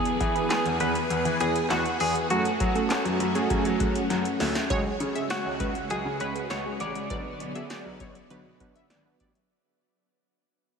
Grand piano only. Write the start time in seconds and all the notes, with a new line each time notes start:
0.21 E3
0.65 E2
0.80 E2
1.10 E2
1.25 E3
1.40 E2
1.70 E2
2.00 E2
2.30 F#2
2.60 F#3
3.05 F#2
3.20 F#2
3.50 F#2
3.65 F#3
3.80 F#2
4.10 F#2
4.40 D2
4.70 C#2
5.00 C#3
5.45 C#2
5.60 C#2
5.91 C#2
6.05 C#3
6.21 C#2
6.51 C#2
6.81 A1
7.10 B1
7.40 B2
7.85 B1
8.00 B1
8.30 B1
8.45 B2
8.60 B1
8.90 G#1
9.20 A1